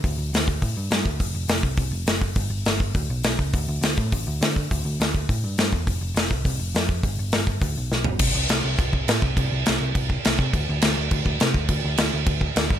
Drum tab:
CC |--------|--------|--------|--------|
HH |o-o-o-o-|o-o-o-o-|o-o-o-o-|o-o-o-o-|
SD |--o---o-|--o---o-|--o---o-|--o---o-|
FT |--------|--------|--------|--------|
BD |o--oo--o|o--oo--o|o--oo--o|o--oo--o|

CC |--------|--------|--------|x-x-x-x-|
HH |o-o-o-o-|o-o-o-o-|o-o-o---|--------|
SD |--o---o-|--o---o-|--o---o-|--o---o-|
FT |--------|--------|-------o|--------|
BD |o--oo--o|o--oo--o|o--oo---|o---oo-o|

CC |x-x-x-x-|x-x-x-x-|x-x-x-x-|
HH |--------|--------|--------|
SD |--o---o-|--o---o-|--o---o-|
FT |--------|--------|--------|
BD |o---oo-o|o---oo-o|o---oo-o|